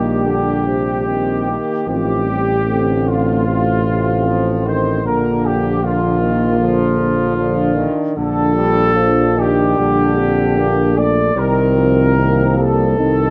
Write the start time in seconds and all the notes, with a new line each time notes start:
Already playing: A#1 D#3 G3 A#3 G4
0.26 D3 D4
0.67 C3
1.07 D#3 C4
1.49 A#3
1.86 A1 F3 C4 G4
2.25 G3
2.65 D3 A3 C4
3.06 F4
3.46 C3 A3 C4
3.86 C3
4.26 F3
4.66 D#3 C5
5.04 A#1 D3 F3 A#3 A#4
5.45 G4
5.83 D3 A#3 F4
6.21 D#3
6.59 D3 F3
7.37 D3 F3 D4
7.76 D#3
8.16 A#1 D3 F3 D4 A4
8.55 G3
8.96 F3 D4
9.36 D#3 G4
9.78 A#1 D3 G3
10.18 C4
10.57 A#3
10.95 A3 D5
11.35 C2 D#3 G3 C4 A#4
11.75 F3
12.17 D#3 F3 A#3
12.58 G3 A4
12.98 C2 D#3 C4 D#4